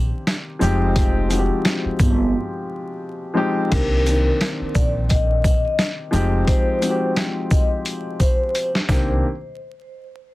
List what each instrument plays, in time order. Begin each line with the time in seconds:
Already playing: grand piano D#3 A#3 C4 D4 G4
0.27 snare, closed hi-hat, sleigh bells
0.59 upright bass F1, grand piano F3 G#3 C4 D#4 G4, shaker, sleigh bells
0.96 kick, closed hi-hat, sleigh bells
1.29 grand piano F3 G#3 C4 D#4 F#4, closed hi-hat, shaker, sleigh bells
1.38 grand piano G4
1.65 snare, closed hi-hat, sleigh bells
1.85 muted upright bass stroke
1.99 upright bass G1, kick, shaker, sleigh bells
3.34 grand piano F3 G#3 C4 D#4 G4
3.68 upright bass C2, grand piano D#3 A#3 C4 D4 G4, vibraphone A#4, kick, closed hi-hat, crash, sleigh bells
4.05 grand piano D#3 A#3 C4 D4 G4, closed hi-hat, shaker, sleigh bells
4.41 snare, closed hi-hat, sleigh bells
4.61 muted upright bass stroke
4.75 upright bass A#1, vibraphone D5, kick, shaker, sleigh bells
5.09 vibraphone D#5, kick, closed hi-hat, sleigh bells
5.44 kick, shaker, sleigh bells
5.65 vibraphone D#5
5.79 snare, closed hi-hat, sleigh bells
6.11 upright bass F1, grand piano F3 G#3 C4 D#4 G4, shaker, sleigh bells
6.48 vibraphone C5, kick, closed hi-hat, sleigh bells
6.80 grand piano F3 G#3 C4 D#4 F#4, closed hi-hat, shaker, sleigh bells
6.90 grand piano G4
7.16 snare, closed hi-hat, sleigh bells
7.50 vibraphone D#5, kick, shaker, sleigh bells
7.85 closed hi-hat, sleigh bells
8.20 vibraphone C5, kick, shaker, sleigh bells
8.55 closed hi-hat, sleigh bells
8.75 snare
8.89 upright bass C2, grand piano D#3 A#3 C4 D4 G4, vibraphone C5, kick, snare, sleigh bells